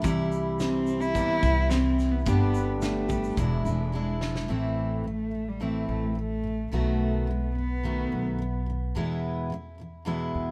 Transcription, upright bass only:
0.04 C2
1.43 C2
2.27 G1
3.37 E1
3.65 E1
4.49 A1
5.89 A1
6.72 B1
8.12 B1
8.96 E2
10.35 E2

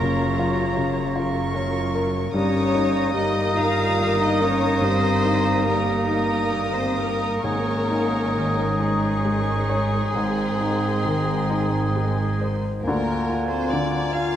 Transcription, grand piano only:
Already playing: C#4 F4 A#4
0.00 C#3
0.39 F4
0.77 C#3
1.16 F4
1.54 C#4
1.95 A#4
2.34 G2
2.74 D#4
3.13 G3
3.56 D#4
3.98 A#3
4.40 A#4
4.81 G2
5.25 D#4
5.66 G3
6.08 D#4
6.51 A#3
6.97 A#4
7.44 G#2
7.90 D#4
8.36 D#3
8.80 D#4
9.24 G#3
9.70 C#5
10.15 G#2
10.60 D#4
11.05 D#3
11.50 D#4
11.96 G#3
12.41 C5
12.87 D2
13.29 F4
13.73 D3
14.15 F4

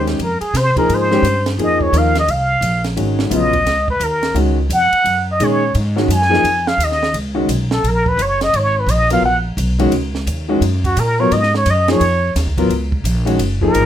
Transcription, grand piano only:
Already playing: D#3 G#3 C#4 G4
0.76 F3 A#3 D#4 G#4
1.11 D#3 G#3 C#4 G4
1.58 F3 A#3 D#4 G#4
1.92 F3 A#3 D#4 A#4
2.96 D#3 G#3 C#4 F#4
3.30 C#3 F#3 B3 F4
4.34 D#3 G#3 C#4 F#4
5.40 D#3 G#3 C#4 G#4
5.96 D#3 G#3 C#4 F#4
6.29 F3 A#3 D#4 G#4
7.34 D#3 G#3 C#4 F#4
9.10 F#3 B3 F4 A#4
9.79 D#3 G#3 C#4 F#4
10.48 D#3 G#3 C#4 F#4
11.20 F#3 B3 F4 A#4
11.88 F3 A#3 D#4 G#4
12.58 F#3 B3 F4 A#4
13.25 D#3 G#3 C#4 F#4
13.61 F3 A#3 D#4 G#4

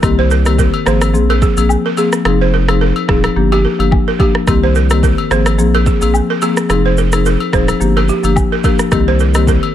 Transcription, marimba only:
0.02 D#3 A#3 C4 G4
0.45 D#3 A#3 C4 G4
0.86 F3 A#3 C4 G#4
1.14 F3 A#3 C4 G#4
1.57 F3 A#3 C4 G#4
1.97 F3 A#3 C4 G#4
2.25 F3 C4 D#4 G#4
2.68 F3 C4 D#4 G#4
3.08 F3 C4 D#4 G#4
3.36 F3 A#3 D4 G4
3.79 F3 A#3 D4 G4
4.19 F3 A#3 D4 G4
4.47 D#3 A#3 C4 G4
4.90 D#3 A#3 C4 G4
5.30 F3 A#3 C4 G#4
5.58 F3 A#3 C4 G#4
6.01 F3 A#3 C4 G#4
6.41 F3 A#3 C4 G#4
6.69 F3 C4 D#4 G#4
7.12 F3 C4 D#4 G#4
7.53 F3 C4 D#4 G#4
7.80 F3 A#3 D4 G4
8.23 F3 A#3 D4 G4
8.64 F3 A#3 D4 G4
8.92 D#3 A#3 C4 G4
9.35 D#3 A#3 C4 G4

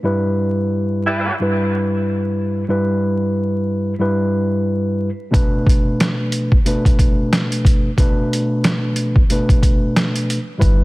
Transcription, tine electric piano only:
0.03 G2 G3 E4 B4
1.40 G2 G3 E4 B4
2.68 G2 G3 E4 B4
3.99 G2 G3 E4 B4
5.31 B2 A3 D4 B4
6.65 B2 A3 D4 B4
7.97 B2 A3 D4 B4
9.30 B2 A3 D4 B4
10.58 G2 G3 E4 B4

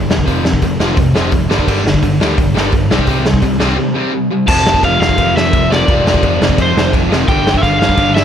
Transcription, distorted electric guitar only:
0.10 G2 D3
0.26 F2 C3 F3
0.45 F2 C3
0.63 F2 C3
0.80 F2 C3 F3
0.98 F2 C3
1.15 F2 C3 F3
1.32 F2 C3
1.50 G2 D3 G3
1.67 G2 D3 G3
1.85 G2 D3
2.02 G2 D3
2.20 G2 D3 G3
2.38 G2 D3
2.54 G2 D3 G3
2.73 G2 D3
2.91 C3 G3 C4
3.08 C3 G3 C4
3.25 C3 G3
3.43 C3 G3
3.60 C3 G3 C4
3.78 C3 G3
3.95 C3 G3 C4
4.14 C3 G3
4.31 C3 G3
4.47 F2 C3
4.51 F3
5.70 F2 C3 F3
5.88 F2 C3 F3
7.10 F2 C3 F3
7.27 G2 D3 G3

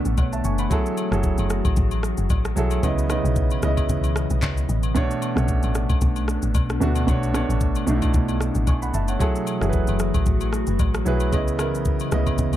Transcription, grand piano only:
Already playing: B2 A3 D4 A4 C#5 E5
0.18 C#5 F#5
0.33 E5 A5
0.45 G#5 C#6
0.59 F#5 B5
0.70 F#3 E4 G#4 A4
1.11 F#3 E4 G#4 A4
2.56 F#3 E4 G#4 A4
2.82 C#3 B3 E4 D#5
3.09 C#3 B3 D#4 D#5
3.17 E4
3.62 C#3 B3 E4 D#5
4.95 B2 A3 D4 C#5
5.36 B2 A3 C#4 C#5
5.44 D4
6.81 B2 A3 D4 F#4
7.07 B2 A3 D4 C#5
7.34 B2 A3 D4 C#5
7.87 B2 A3 D4 D#4
7.95 E4
8.68 G#5 C#6
8.82 F#5 B5
8.94 E5 A5
9.09 C#5 F#5
9.19 F#3 E4 G#4 A4
9.61 F#3 E4 G#4 A4
9.69 B4
11.05 F#3 E4 G#4 B4
11.32 C#3 B3 E4 D#5
11.58 C#3 B3 E4 A#4
12.11 C#3 B3 E4 D#5

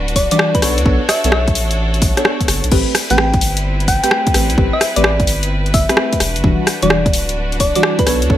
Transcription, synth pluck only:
0.16 D5
0.32 D5
0.40 D5
0.55 B4
0.63 B4
1.09 E5
1.32 E5
3.11 G5
3.88 G5
4.04 G5
4.11 G5
4.73 E5
4.96 D5
5.04 D5
5.74 E5
6.83 D5
7.60 D5
7.76 D5
7.84 D5
7.99 B4
8.07 B4

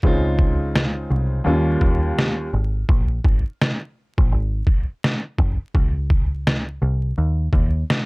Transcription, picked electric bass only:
0.03 C#2
1.10 C2
1.46 D#2
1.81 D#2
2.53 G#1
2.89 A#1
3.25 G#1
4.18 A#1
4.32 G#1
5.39 F#1
5.75 C#2
6.82 C2
7.18 D#2
7.53 D#2

